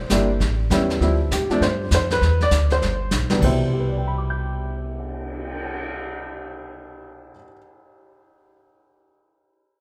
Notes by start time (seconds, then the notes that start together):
Already playing: C5
0.10 G1 G3 A#3 D4 E4, kick, snare, hi-hat pedal
0.40 A1, brush sweep, kick, snare
0.70 E2 G3 B3 C#4 E4, kick, snare, hi-hat pedal
0.90 snare
1.00 D2 F3 G3 C4 E4, brush sweep, kick, snare
1.31 A2 G4, kick, snare, hi-hat pedal
1.50 F3 A3 C4 D4, muted upright bass stroke, snare
1.61 G2 C5, brush sweep, kick, snare
1.91 F2 C5, kick, snare, hi-hat pedal
2.10 B4, snare
2.21 E2, brush sweep, kick, snare
2.41 D5, snare
2.51 D2, kick, snare, hi-hat pedal
2.70 C5, snare
2.82 G1, snare
3.11 B1, snare, hi-hat pedal
3.22 G1
3.30 F1 C2 E3 G3 B3 D4, snare
3.40 C2 B2 C3 G3 E4 C5, kick, crash
3.61 cymbal swell
3.73 G4
3.80 B4
3.88 D5
3.98 G5
4.07 B5
4.18 D6
4.30 G6